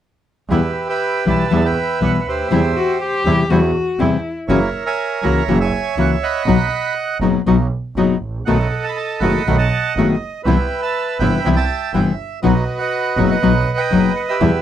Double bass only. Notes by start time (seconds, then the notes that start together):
0.49 E2
1.26 B1
1.51 E2
2.01 B1
2.26 D2
2.50 E2
3.25 E2
3.49 E2
3.99 E2
4.49 F#1
5.22 C#2
5.47 F#1
5.96 C#2
6.45 B1
7.20 F#1
7.45 B1
7.96 F#1
8.22 A1
8.46 B1
9.21 F#1
9.46 B1
9.96 F#1
10.46 C2
11.20 G1
11.45 C2
11.94 G1
12.44 B1
13.17 F#1
13.42 B1
13.92 F#1
14.41 E2